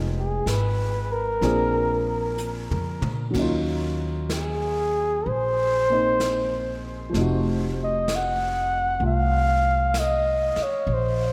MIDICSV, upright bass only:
0, 0, Header, 1, 3, 480
1, 0, Start_track
1, 0, Tempo, 953895
1, 1688, Time_signature, 4, 2, 24, 8
1, 3127, Tempo, 933126
1, 5756, End_track
2, 0, Start_track
2, 0, Title_t, "Upright bass"
2, 0, Program_c, 0, 32
2, 0, Note_on_c, 0, 29, 67
2, 219, Note_off_c, 0, 29, 0
2, 232, Note_on_c, 0, 32, 59
2, 697, Note_off_c, 0, 32, 0
2, 711, Note_on_c, 0, 34, 62
2, 1341, Note_off_c, 0, 34, 0
2, 1361, Note_on_c, 0, 41, 46
2, 1513, Note_off_c, 0, 41, 0
2, 1517, Note_on_c, 0, 46, 53
2, 1671, Note_off_c, 0, 46, 0
2, 1678, Note_on_c, 0, 39, 62
2, 2624, Note_off_c, 0, 39, 0
2, 2646, Note_on_c, 0, 34, 63
2, 3587, Note_off_c, 0, 34, 0
2, 3603, Note_on_c, 0, 29, 64
2, 4541, Note_off_c, 0, 29, 0
2, 4560, Note_on_c, 0, 36, 67
2, 5343, Note_off_c, 0, 36, 0
2, 5520, Note_on_c, 0, 34, 70
2, 5756, Note_off_c, 0, 34, 0
2, 5756, End_track
3, 0, Start_track
3, 0, Title_t, "Muted upright bass strokes"
3, 5366, Note_on_c, 9, 29, 33
3, 5418, Note_off_c, 9, 29, 0
3, 5756, End_track
0, 0, End_of_file